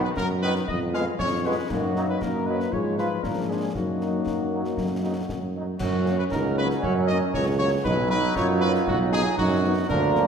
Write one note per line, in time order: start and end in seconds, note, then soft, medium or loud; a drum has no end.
0.04 0.10 B4 loud
0.17 0.59 F#2 medium
0.17 0.28 A#4 loud
0.17 concert bass drum medium
0.17 snare medium
0.42 0.52 D#3 medium
0.42 0.52 F#3 medium
0.42 0.52 B3 medium
0.42 0.52 D#4 medium
0.42 0.54 B4 loud
0.55 snare medium
0.68 1.11 F2 loud
0.68 0.80 D#5 loud
0.68 concert bass drum medium
0.94 1.03 G#3 medium
0.94 1.03 B3 medium
0.94 1.03 F4 medium
0.94 1.05 F5 loud
0.94 snare medium
1.19 1.62 F2 medium
1.19 1.43 C#5 loud
1.19 concert bass drum medium
1.19 snare medium
1.45 1.54 G#3 medium
1.45 1.54 B3 medium
1.45 1.54 F4 medium
1.45 1.71 B4 loud
1.70 2.16 F#2 medium
1.70 2.18 F#3 medium
1.70 2.18 A#3 medium
1.70 2.18 D#4 medium
1.70 2.09 F#4 loud
1.70 concert bass drum medium
1.70 crash soft
1.96 2.05 F#3 medium
1.96 2.05 D#4 medium
1.96 snare medium
2.09 2.21 B4 medium
2.21 2.67 F#2 medium
2.21 2.69 F#3 medium
2.21 2.69 A#3 medium
2.21 2.69 D#4 medium
2.21 2.47 A#4 medium
2.21 concert bass drum medium
2.21 snare medium
2.47 2.56 F#3 medium
2.47 2.56 D#4 medium
2.47 2.73 B4 loud
2.60 snare medium
2.72 3.18 G#2 medium
2.72 3.23 F3 medium
2.72 3.20 G#3 medium
2.72 2.98 F4 medium
2.72 2.99 C#5 medium
2.72 concert bass drum medium
2.98 3.07 F3 medium
2.98 3.24 D#4 medium
2.98 3.07 F4 medium
2.98 3.22 B4 medium
2.98 snare soft
3.24 3.69 G#2 medium
3.24 3.72 F3 medium
3.24 3.75 A#3 medium
3.24 3.75 D4 medium
3.24 3.50 A#4 medium
3.24 concert bass drum medium
3.24 snare medium
3.49 3.59 F3 medium
3.49 3.59 D4 medium
3.49 3.75 G#4 medium
3.75 4.20 F#2 medium
3.75 5.55 F#3 medium
3.75 5.51 A#3 medium
3.75 5.51 D#4 medium
3.75 5.51 F#4 medium
3.75 concert bass drum medium
4.01 4.10 F#3 medium
4.01 4.10 D#4 medium
4.01 snare soft
4.26 4.72 F#2 medium
4.26 concert bass drum medium
4.26 snare medium
4.53 4.62 F#3 medium
4.53 4.62 D#4 medium
4.65 snare medium
4.77 5.23 F#2 medium
4.77 concert bass drum medium
4.77 snare medium
5.04 5.13 F#3 medium
5.04 5.13 D#4 medium
5.29 5.74 F#2 medium
5.29 concert bass drum medium
5.29 snare medium
5.55 5.64 F#3 medium
5.55 5.64 D#4 medium
5.80 6.23 F#2 loud
5.80 7.82 F#3 loud
5.80 6.28 C#4 loud
5.80 7.82 C#4 loud
5.80 6.16 F#4 loud
5.80 concert bass drum medium
5.80 crash medium
6.06 6.15 F#3 medium
6.06 6.15 A#3 medium
6.06 6.15 C#4 medium
6.06 snare medium
6.19 6.25 B4 loud
6.31 6.74 C#2 medium
6.31 6.84 D#4 loud
6.31 6.55 A#4 loud
6.31 concert bass drum medium
6.31 snare medium
6.57 6.67 F#3 medium
6.57 6.67 A#3 medium
6.57 6.67 C#4 medium
6.57 6.69 B4 loud
6.70 snare medium
6.82 7.21 F#2 loud
6.82 7.84 C#4 loud
6.82 6.94 C#5 loud
6.82 concert bass drum medium
7.08 7.18 F#3 medium
7.08 7.18 A#3 medium
7.08 7.18 C#4 medium
7.08 7.19 D#5 loud
7.08 snare medium
7.34 7.77 C#2 loud
7.34 7.45 C#5 loud
7.34 concert bass drum medium
7.34 snare medium
7.59 7.69 F#3 medium
7.59 7.69 A#3 medium
7.59 7.69 C#4 medium
7.59 7.71 C#5 loud
7.84 8.28 B1 loud
7.84 9.86 F#3 loud
7.84 8.33 D#4 loud
7.84 9.87 D#4 loud
7.84 8.09 B4 loud
7.84 concert bass drum medium
7.84 crash soft
8.10 8.20 F#3 medium
8.10 8.20 B3 medium
8.10 8.20 D#4 medium
8.10 8.34 B4 loud
8.10 snare medium
8.36 8.79 F#2 loud
8.36 9.35 F4 loud
8.36 8.48 C#5 loud
8.36 concert bass drum medium
8.36 snare medium
8.61 8.71 F#3 medium
8.61 8.71 B3 medium
8.61 8.71 D#4 medium
8.61 8.73 B4 loud
8.74 snare medium
8.87 9.30 B1 loud
8.87 8.99 F#4 loud
8.87 concert bass drum medium
9.13 9.23 F#3 medium
9.13 9.22 B3 medium
9.13 9.23 D#4 medium
9.13 9.37 G#4 loud
9.13 snare medium
9.38 9.82 F#2 loud
9.38 9.86 D#4 loud
9.38 9.86 F#4 loud
9.38 concert bass drum medium
9.38 snare medium
9.64 9.74 F#3 medium
9.64 9.74 B3 medium
9.64 9.74 D#4 medium
9.89 10.27 D2 loud
9.89 10.27 F3 loud
9.89 10.27 A#3 loud
9.89 10.27 D4 loud
9.89 10.25 A#4 loud
9.89 concert bass drum medium
9.89 crash soft
10.15 10.25 F3 medium
10.15 10.25 A#3 medium
10.15 10.25 F4 medium
10.15 snare medium